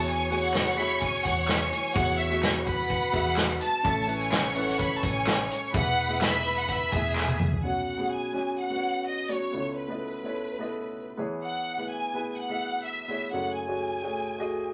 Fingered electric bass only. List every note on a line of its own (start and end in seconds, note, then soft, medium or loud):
0.00 1.21 E2 loud
1.25 1.69 E2 medium
1.96 3.10 E2 loud
3.14 3.58 E2 loud
3.85 4.99 A1 loud
5.03 5.47 A1 loud
5.74 6.88 E1 loud
6.92 7.36 E1 medium